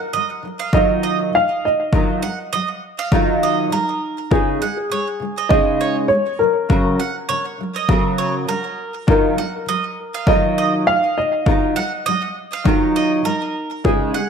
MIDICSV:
0, 0, Header, 1, 5, 480
1, 0, Start_track
1, 0, Key_signature, -6, "minor"
1, 0, Tempo, 596421
1, 1551, Time_signature, 4, 2, 24, 8
1, 11504, End_track
2, 0, Start_track
2, 0, Title_t, "Mandolin"
2, 0, Program_c, 0, 25
2, 107, Note_on_c, 0, 75, 65
2, 235, Note_off_c, 0, 75, 0
2, 479, Note_on_c, 0, 77, 59
2, 709, Note_off_c, 0, 77, 0
2, 831, Note_on_c, 0, 75, 62
2, 957, Note_off_c, 0, 75, 0
2, 1791, Note_on_c, 0, 78, 64
2, 1916, Note_off_c, 0, 78, 0
2, 2033, Note_on_c, 0, 75, 69
2, 2157, Note_off_c, 0, 75, 0
2, 2406, Note_on_c, 0, 77, 65
2, 2632, Note_off_c, 0, 77, 0
2, 2761, Note_on_c, 0, 75, 62
2, 2881, Note_off_c, 0, 75, 0
2, 2996, Note_on_c, 0, 70, 70
2, 3343, Note_off_c, 0, 70, 0
2, 3716, Note_on_c, 0, 78, 65
2, 3838, Note_off_c, 0, 78, 0
2, 3956, Note_on_c, 0, 73, 68
2, 4079, Note_off_c, 0, 73, 0
2, 4328, Note_on_c, 0, 75, 58
2, 4553, Note_off_c, 0, 75, 0
2, 4673, Note_on_c, 0, 73, 61
2, 4797, Note_off_c, 0, 73, 0
2, 5630, Note_on_c, 0, 78, 64
2, 5755, Note_off_c, 0, 78, 0
2, 5865, Note_on_c, 0, 73, 69
2, 5993, Note_off_c, 0, 73, 0
2, 6244, Note_on_c, 0, 75, 64
2, 6471, Note_off_c, 0, 75, 0
2, 6585, Note_on_c, 0, 73, 62
2, 6713, Note_off_c, 0, 73, 0
2, 6829, Note_on_c, 0, 70, 68
2, 7179, Note_off_c, 0, 70, 0
2, 7550, Note_on_c, 0, 78, 64
2, 7675, Note_off_c, 0, 78, 0
2, 7795, Note_on_c, 0, 75, 68
2, 7918, Note_off_c, 0, 75, 0
2, 8165, Note_on_c, 0, 77, 63
2, 8391, Note_off_c, 0, 77, 0
2, 8515, Note_on_c, 0, 75, 62
2, 8637, Note_off_c, 0, 75, 0
2, 9465, Note_on_c, 0, 78, 69
2, 9592, Note_off_c, 0, 78, 0
2, 9706, Note_on_c, 0, 75, 76
2, 9833, Note_off_c, 0, 75, 0
2, 10086, Note_on_c, 0, 77, 64
2, 10311, Note_off_c, 0, 77, 0
2, 10430, Note_on_c, 0, 75, 65
2, 10554, Note_off_c, 0, 75, 0
2, 10665, Note_on_c, 0, 70, 69
2, 11016, Note_off_c, 0, 70, 0
2, 11383, Note_on_c, 0, 78, 70
2, 11504, Note_off_c, 0, 78, 0
2, 11504, End_track
3, 0, Start_track
3, 0, Title_t, "Upright piano"
3, 0, Program_c, 1, 0
3, 0, Note_on_c, 1, 70, 64
3, 598, Note_on_c, 1, 75, 81
3, 621, Note_off_c, 1, 70, 0
3, 1086, Note_on_c, 1, 77, 84
3, 1089, Note_off_c, 1, 75, 0
3, 1326, Note_off_c, 1, 77, 0
3, 1330, Note_on_c, 1, 75, 76
3, 2727, Note_off_c, 1, 75, 0
3, 3476, Note_on_c, 1, 68, 70
3, 4421, Note_on_c, 1, 75, 91
3, 4461, Note_off_c, 1, 68, 0
3, 4873, Note_off_c, 1, 75, 0
3, 4895, Note_on_c, 1, 73, 81
3, 5143, Note_on_c, 1, 70, 73
3, 5150, Note_off_c, 1, 73, 0
3, 6554, Note_off_c, 1, 70, 0
3, 7325, Note_on_c, 1, 70, 68
3, 8273, Note_on_c, 1, 75, 85
3, 8306, Note_off_c, 1, 70, 0
3, 8719, Note_off_c, 1, 75, 0
3, 8748, Note_on_c, 1, 77, 92
3, 8994, Note_on_c, 1, 75, 81
3, 8996, Note_off_c, 1, 77, 0
3, 10399, Note_off_c, 1, 75, 0
3, 11147, Note_on_c, 1, 68, 76
3, 11504, Note_off_c, 1, 68, 0
3, 11504, End_track
4, 0, Start_track
4, 0, Title_t, "Nylon-string guitar"
4, 0, Program_c, 2, 24
4, 108, Note_on_c, 2, 51, 47
4, 130, Note_on_c, 2, 54, 53
4, 306, Note_off_c, 2, 51, 0
4, 318, Note_off_c, 2, 54, 0
4, 343, Note_on_c, 2, 51, 43
4, 363, Note_on_c, 2, 54, 45
4, 544, Note_off_c, 2, 51, 0
4, 554, Note_off_c, 2, 54, 0
4, 586, Note_on_c, 2, 51, 70
4, 593, Note_on_c, 2, 54, 68
4, 593, Note_on_c, 2, 63, 67
4, 599, Note_on_c, 2, 65, 68
4, 603, Note_on_c, 2, 70, 71
4, 1065, Note_off_c, 2, 51, 0
4, 1068, Note_on_c, 2, 51, 50
4, 1072, Note_off_c, 2, 54, 0
4, 1075, Note_off_c, 2, 65, 0
4, 1077, Note_off_c, 2, 70, 0
4, 1087, Note_on_c, 2, 54, 55
4, 1267, Note_off_c, 2, 51, 0
4, 1276, Note_off_c, 2, 54, 0
4, 1549, Note_on_c, 2, 51, 66
4, 1553, Note_off_c, 2, 63, 0
4, 1556, Note_on_c, 2, 54, 66
4, 1556, Note_on_c, 2, 63, 74
4, 1560, Note_on_c, 2, 65, 71
4, 1564, Note_on_c, 2, 70, 71
4, 1779, Note_off_c, 2, 51, 0
4, 1789, Note_on_c, 2, 51, 41
4, 1793, Note_off_c, 2, 54, 0
4, 1793, Note_off_c, 2, 63, 0
4, 1795, Note_off_c, 2, 65, 0
4, 1797, Note_off_c, 2, 70, 0
4, 1812, Note_on_c, 2, 54, 44
4, 1987, Note_off_c, 2, 51, 0
4, 1998, Note_off_c, 2, 54, 0
4, 2034, Note_on_c, 2, 51, 55
4, 2054, Note_on_c, 2, 54, 61
4, 2229, Note_off_c, 2, 51, 0
4, 2239, Note_off_c, 2, 54, 0
4, 2509, Note_on_c, 2, 51, 71
4, 2515, Note_on_c, 2, 54, 84
4, 2516, Note_on_c, 2, 63, 90
4, 2520, Note_on_c, 2, 70, 84
4, 2521, Note_on_c, 2, 65, 87
4, 2976, Note_off_c, 2, 51, 0
4, 2979, Note_on_c, 2, 51, 57
4, 2993, Note_off_c, 2, 54, 0
4, 2995, Note_off_c, 2, 65, 0
4, 2995, Note_off_c, 2, 70, 0
4, 3004, Note_on_c, 2, 54, 63
4, 3181, Note_off_c, 2, 51, 0
4, 3194, Note_off_c, 2, 54, 0
4, 3465, Note_on_c, 2, 49, 70
4, 3469, Note_off_c, 2, 63, 0
4, 3472, Note_on_c, 2, 56, 68
4, 3472, Note_on_c, 2, 61, 74
4, 3478, Note_on_c, 2, 63, 71
4, 3481, Note_on_c, 2, 68, 78
4, 3696, Note_off_c, 2, 49, 0
4, 3706, Note_on_c, 2, 49, 42
4, 3711, Note_off_c, 2, 56, 0
4, 3711, Note_off_c, 2, 61, 0
4, 3714, Note_off_c, 2, 63, 0
4, 3716, Note_off_c, 2, 68, 0
4, 3728, Note_on_c, 2, 56, 48
4, 3905, Note_off_c, 2, 49, 0
4, 3916, Note_off_c, 2, 56, 0
4, 3941, Note_on_c, 2, 49, 54
4, 3963, Note_on_c, 2, 56, 58
4, 4142, Note_off_c, 2, 49, 0
4, 4153, Note_off_c, 2, 56, 0
4, 4183, Note_on_c, 2, 49, 46
4, 4202, Note_on_c, 2, 56, 49
4, 4383, Note_off_c, 2, 49, 0
4, 4393, Note_off_c, 2, 56, 0
4, 4428, Note_on_c, 2, 49, 75
4, 4433, Note_on_c, 2, 56, 66
4, 4436, Note_on_c, 2, 63, 75
4, 4437, Note_on_c, 2, 61, 71
4, 4440, Note_on_c, 2, 68, 76
4, 4897, Note_off_c, 2, 49, 0
4, 4906, Note_on_c, 2, 49, 50
4, 4911, Note_off_c, 2, 56, 0
4, 4913, Note_off_c, 2, 63, 0
4, 4915, Note_off_c, 2, 68, 0
4, 4927, Note_on_c, 2, 56, 56
4, 5105, Note_off_c, 2, 49, 0
4, 5115, Note_off_c, 2, 56, 0
4, 5139, Note_on_c, 2, 49, 37
4, 5163, Note_on_c, 2, 54, 47
4, 5341, Note_off_c, 2, 49, 0
4, 5353, Note_off_c, 2, 54, 0
4, 5382, Note_on_c, 2, 49, 64
4, 5387, Note_off_c, 2, 61, 0
4, 5389, Note_on_c, 2, 54, 63
4, 5391, Note_on_c, 2, 61, 70
4, 5392, Note_on_c, 2, 66, 71
4, 5397, Note_on_c, 2, 70, 73
4, 5611, Note_off_c, 2, 49, 0
4, 5620, Note_on_c, 2, 49, 42
4, 5629, Note_off_c, 2, 54, 0
4, 5630, Note_off_c, 2, 61, 0
4, 5631, Note_off_c, 2, 66, 0
4, 5633, Note_off_c, 2, 70, 0
4, 5637, Note_on_c, 2, 54, 47
4, 5822, Note_off_c, 2, 49, 0
4, 5830, Note_off_c, 2, 54, 0
4, 5865, Note_on_c, 2, 49, 56
4, 5884, Note_on_c, 2, 54, 66
4, 6064, Note_off_c, 2, 49, 0
4, 6074, Note_off_c, 2, 54, 0
4, 6101, Note_on_c, 2, 49, 41
4, 6121, Note_on_c, 2, 54, 51
4, 6302, Note_off_c, 2, 49, 0
4, 6312, Note_off_c, 2, 54, 0
4, 6347, Note_on_c, 2, 49, 75
4, 6348, Note_on_c, 2, 54, 79
4, 6354, Note_on_c, 2, 61, 82
4, 6357, Note_on_c, 2, 66, 81
4, 6360, Note_on_c, 2, 70, 86
4, 6810, Note_off_c, 2, 49, 0
4, 6819, Note_on_c, 2, 49, 61
4, 6832, Note_off_c, 2, 61, 0
4, 6837, Note_off_c, 2, 54, 0
4, 6840, Note_on_c, 2, 54, 66
4, 7021, Note_off_c, 2, 49, 0
4, 7031, Note_off_c, 2, 54, 0
4, 7300, Note_on_c, 2, 51, 62
4, 7306, Note_off_c, 2, 66, 0
4, 7306, Note_on_c, 2, 54, 64
4, 7307, Note_on_c, 2, 63, 67
4, 7309, Note_off_c, 2, 70, 0
4, 7309, Note_on_c, 2, 65, 72
4, 7312, Note_on_c, 2, 70, 71
4, 7523, Note_off_c, 2, 51, 0
4, 7533, Note_on_c, 2, 51, 41
4, 7548, Note_off_c, 2, 54, 0
4, 7548, Note_off_c, 2, 63, 0
4, 7549, Note_off_c, 2, 65, 0
4, 7551, Note_off_c, 2, 70, 0
4, 7557, Note_on_c, 2, 54, 47
4, 7738, Note_off_c, 2, 51, 0
4, 7750, Note_off_c, 2, 54, 0
4, 7774, Note_on_c, 2, 51, 47
4, 7795, Note_on_c, 2, 54, 55
4, 7978, Note_off_c, 2, 51, 0
4, 7989, Note_off_c, 2, 54, 0
4, 8260, Note_on_c, 2, 51, 68
4, 8263, Note_on_c, 2, 54, 70
4, 8269, Note_on_c, 2, 63, 65
4, 8275, Note_on_c, 2, 65, 79
4, 8276, Note_on_c, 2, 70, 73
4, 8740, Note_off_c, 2, 51, 0
4, 8743, Note_on_c, 2, 51, 48
4, 8746, Note_off_c, 2, 54, 0
4, 8752, Note_off_c, 2, 65, 0
4, 8752, Note_off_c, 2, 70, 0
4, 8767, Note_on_c, 2, 54, 58
4, 8943, Note_off_c, 2, 51, 0
4, 8954, Note_off_c, 2, 54, 0
4, 9221, Note_on_c, 2, 51, 67
4, 9223, Note_off_c, 2, 63, 0
4, 9224, Note_on_c, 2, 54, 64
4, 9226, Note_on_c, 2, 63, 74
4, 9233, Note_on_c, 2, 65, 68
4, 9236, Note_on_c, 2, 70, 71
4, 9454, Note_off_c, 2, 51, 0
4, 9464, Note_on_c, 2, 51, 39
4, 9466, Note_off_c, 2, 54, 0
4, 9467, Note_off_c, 2, 63, 0
4, 9471, Note_off_c, 2, 65, 0
4, 9472, Note_off_c, 2, 70, 0
4, 9485, Note_on_c, 2, 54, 49
4, 9663, Note_off_c, 2, 51, 0
4, 9674, Note_off_c, 2, 54, 0
4, 9701, Note_on_c, 2, 51, 59
4, 9722, Note_on_c, 2, 54, 67
4, 9902, Note_off_c, 2, 51, 0
4, 9912, Note_off_c, 2, 54, 0
4, 10174, Note_on_c, 2, 51, 80
4, 10180, Note_on_c, 2, 54, 80
4, 10185, Note_on_c, 2, 63, 86
4, 10186, Note_on_c, 2, 70, 87
4, 10187, Note_on_c, 2, 65, 84
4, 10651, Note_off_c, 2, 51, 0
4, 10654, Note_on_c, 2, 51, 57
4, 10664, Note_off_c, 2, 54, 0
4, 10667, Note_off_c, 2, 65, 0
4, 10667, Note_off_c, 2, 70, 0
4, 10672, Note_on_c, 2, 54, 74
4, 10858, Note_off_c, 2, 51, 0
4, 10867, Note_off_c, 2, 54, 0
4, 11139, Note_on_c, 2, 49, 72
4, 11144, Note_off_c, 2, 63, 0
4, 11145, Note_on_c, 2, 56, 72
4, 11148, Note_on_c, 2, 61, 74
4, 11152, Note_on_c, 2, 63, 71
4, 11154, Note_on_c, 2, 68, 74
4, 11367, Note_off_c, 2, 49, 0
4, 11376, Note_on_c, 2, 49, 43
4, 11386, Note_off_c, 2, 56, 0
4, 11388, Note_off_c, 2, 61, 0
4, 11390, Note_off_c, 2, 63, 0
4, 11391, Note_off_c, 2, 68, 0
4, 11403, Note_on_c, 2, 56, 51
4, 11504, Note_off_c, 2, 49, 0
4, 11504, Note_off_c, 2, 56, 0
4, 11504, End_track
5, 0, Start_track
5, 0, Title_t, "Drums"
5, 587, Note_on_c, 9, 36, 90
5, 668, Note_off_c, 9, 36, 0
5, 1550, Note_on_c, 9, 36, 90
5, 1631, Note_off_c, 9, 36, 0
5, 2509, Note_on_c, 9, 36, 96
5, 2590, Note_off_c, 9, 36, 0
5, 3472, Note_on_c, 9, 36, 94
5, 3552, Note_off_c, 9, 36, 0
5, 4431, Note_on_c, 9, 36, 96
5, 4511, Note_off_c, 9, 36, 0
5, 5391, Note_on_c, 9, 36, 97
5, 5471, Note_off_c, 9, 36, 0
5, 6348, Note_on_c, 9, 36, 93
5, 6428, Note_off_c, 9, 36, 0
5, 7307, Note_on_c, 9, 36, 100
5, 7387, Note_off_c, 9, 36, 0
5, 8264, Note_on_c, 9, 36, 95
5, 8345, Note_off_c, 9, 36, 0
5, 9226, Note_on_c, 9, 36, 96
5, 9306, Note_off_c, 9, 36, 0
5, 10185, Note_on_c, 9, 36, 92
5, 10265, Note_off_c, 9, 36, 0
5, 11145, Note_on_c, 9, 36, 96
5, 11225, Note_off_c, 9, 36, 0
5, 11504, End_track
0, 0, End_of_file